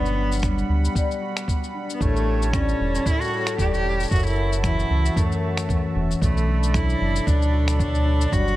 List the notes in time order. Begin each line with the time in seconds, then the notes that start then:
Already playing: G1 F#3 G3 B3 D4 F#4 F#5 B5
0.06 cabasa
0.16 D4
0.32 cabasa
0.34 cabasa
0.36 cabasa
0.41 G3 B3, finger snap, kick, cabasa
0.44 cabasa
0.58 cabasa
0.69 D2
0.85 cabasa
0.95 G3, kick, cabasa
1.11 cabasa
1.21 F#4
1.37 finger snap, cabasa
1.47 B3, kick, cabasa
1.64 cabasa
1.74 D4
1.90 cabasa
1.94 B3
2.00 A1 A2 A3 A4 C#5 A5, kick, cabasa
2.16 cabasa
2.26 C#4
2.42 cabasa
2.53 G3 C#4, finger snap, kick, cabasa
2.69 cabasa
2.80 E1
2.95 cabasa
3.05 A2 E4, kick, cabasa
3.21 F#4, cabasa
3.24 cabasa
3.27 cabasa
3.32 A4
3.37 cabasa
3.40 cabasa
3.44 finger snap, cabasa
3.47 cabasa
3.58 E1 G3 G4, kick, cabasa
3.74 G4, cabasa
3.85 C#4
4.00 cabasa
4.03 cabasa
4.05 cabasa
4.07 cabasa
4.09 F#1 F#2 F#4 E5, kick, cabasa
4.11 F#4, cabasa
4.15 cabasa
4.19 cabasa
4.23 E4, cabasa
4.26 cabasa
4.29 cabasa
4.37 C#4
4.53 cabasa
4.63 E3 E4, finger snap, kick, cabasa
4.79 cabasa
4.90 C#2
5.05 cabasa
5.16 F#2 A3, kick, cabasa
5.32 cabasa
5.42 F#4
5.57 finger snap, cabasa
5.68 E3, kick, cabasa
5.95 E1 C#4
6.11 cabasa
6.21 B1 B2 A3 F#4 A4 D5 B5, kick, cabasa
6.37 cabasa
6.48 D4
6.63 cabasa
6.74 F#3 E4, finger snap, kick, cabasa
6.89 cabasa
7.01 F#1
7.16 cabasa
7.26 D2 B2 D4, kick, cabasa
7.42 cabasa
7.53 F#4
7.68 finger snap, cabasa
7.79 F#3 D4, kick, cabasa
7.95 cabasa
8.06 D4
8.21 cabasa
8.31 G1 G3 F#4 F#5, kick, cabasa
8.48 cabasa